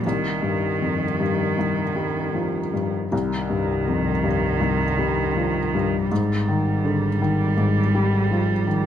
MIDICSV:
0, 0, Header, 1, 4, 480
1, 0, Start_track
1, 0, Key_signature, -3, "minor"
1, 0, Tempo, 768246
1, 21, Time_signature, 4, 2, 24, 8
1, 2421, Tempo, 737101
1, 5667, End_track
2, 0, Start_track
2, 0, Title_t, "Cello"
2, 0, Program_c, 0, 42
2, 33, Note_on_c, 0, 51, 37
2, 1828, Note_off_c, 0, 51, 0
2, 1956, Note_on_c, 0, 51, 50
2, 3850, Note_off_c, 0, 51, 0
2, 3862, Note_on_c, 0, 55, 47
2, 5667, Note_off_c, 0, 55, 0
2, 5667, End_track
3, 0, Start_track
3, 0, Title_t, "Felt piano"
3, 0, Program_c, 1, 0
3, 0, Control_c, 1, 64, 127
3, 33, Control_c, 1, 64, 0
3, 39, Note_on_c, 1, 36, 35
3, 138, Control_c, 1, 64, 127
3, 264, Note_on_c, 1, 43, 26
3, 509, Note_on_c, 1, 41, 20
3, 653, Note_off_c, 1, 43, 0
3, 750, Note_off_c, 1, 41, 0
3, 750, Note_on_c, 1, 43, 25
3, 974, Note_off_c, 1, 36, 0
3, 988, Note_on_c, 1, 36, 26
3, 1133, Note_off_c, 1, 43, 0
3, 1222, Note_on_c, 1, 55, 21
3, 1464, Note_on_c, 1, 53, 20
3, 1610, Note_off_c, 1, 55, 0
3, 1708, Note_off_c, 1, 53, 0
3, 1708, Note_on_c, 1, 43, 24
3, 1925, Note_off_c, 1, 36, 0
3, 1949, Note_off_c, 1, 43, 0
3, 1951, Note_on_c, 1, 36, 45
3, 1961, Control_c, 1, 64, 0
3, 2067, Control_c, 1, 64, 127
3, 2185, Note_on_c, 1, 43, 31
3, 2423, Note_on_c, 1, 41, 33
3, 2566, Note_off_c, 1, 43, 0
3, 2657, Note_on_c, 1, 43, 35
3, 2665, Note_off_c, 1, 41, 0
3, 2879, Note_off_c, 1, 36, 0
3, 2896, Note_on_c, 1, 36, 33
3, 3047, Note_off_c, 1, 43, 0
3, 3140, Note_on_c, 1, 55, 33
3, 3392, Note_on_c, 1, 53, 32
3, 3530, Note_off_c, 1, 55, 0
3, 3633, Note_off_c, 1, 53, 0
3, 3637, Note_on_c, 1, 43, 35
3, 3842, Note_off_c, 1, 36, 0
3, 3876, Note_off_c, 1, 43, 0
3, 3878, Note_on_c, 1, 44, 45
3, 3885, Control_c, 1, 64, 0
3, 4003, Control_c, 1, 64, 127
3, 4121, Note_on_c, 1, 51, 36
3, 4356, Note_on_c, 1, 50, 31
3, 4498, Note_off_c, 1, 51, 0
3, 4592, Note_off_c, 1, 50, 0
3, 4598, Note_on_c, 1, 51, 40
3, 4804, Note_off_c, 1, 44, 0
3, 4825, Note_on_c, 1, 44, 37
3, 4974, Note_off_c, 1, 51, 0
3, 5071, Note_on_c, 1, 55, 39
3, 5309, Note_on_c, 1, 53, 34
3, 5451, Note_off_c, 1, 55, 0
3, 5544, Note_on_c, 1, 51, 39
3, 5546, Note_off_c, 1, 53, 0
3, 5667, Note_off_c, 1, 44, 0
3, 5667, Note_off_c, 1, 51, 0
3, 5667, End_track
4, 0, Start_track
4, 0, Title_t, "Double bass"
4, 0, Program_c, 2, 43
4, 1955, Note_on_c, 2, 36, 37
4, 3876, Note_on_c, 2, 32, 41
4, 3885, Note_off_c, 2, 36, 0
4, 5667, Note_off_c, 2, 32, 0
4, 5667, End_track
0, 0, End_of_file